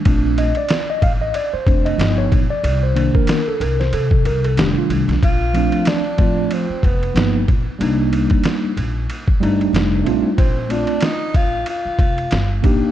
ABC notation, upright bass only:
X:1
M:4/4
L:1/16
Q:"Swing 16ths" 1/4=93
K:Bb
V:1 name="Upright bass" clef=bass
B,,,3 z3 A,,,2 z2 F,,,2 G,,,2 ^A,,, z | C,,3 z3 C,,2 C,2 C,,2 F,,, z C,, _C,, | B,,,3 z3 A,,,2 z2 F,,,2 G,,,2 ^A,,, z | C,,3 z3 B,,,2 z2 G,,,2 F,,,2 A,,, z |
B,,,3 z3 A,,,2 z2 F,,,2 G,,,2 B,,, z |]